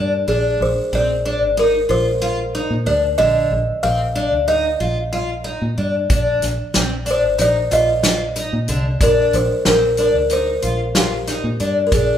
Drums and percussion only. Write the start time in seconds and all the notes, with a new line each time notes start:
6.10 kick, closed hi-hat
6.42 snare, closed hi-hat
6.74 snare, closed hi-hat
7.06 closed hi-hat
7.39 closed hi-hat
7.72 closed hi-hat
8.03 snare, closed hi-hat
8.36 closed hi-hat
8.68 closed hi-hat
9.01 kick, closed hi-hat
9.33 closed hi-hat
9.65 snare, closed hi-hat
9.97 closed hi-hat
10.30 closed hi-hat
10.62 closed hi-hat
10.95 snare, closed hi-hat
11.27 snare, closed hi-hat
11.60 closed hi-hat
11.92 kick, closed hi-hat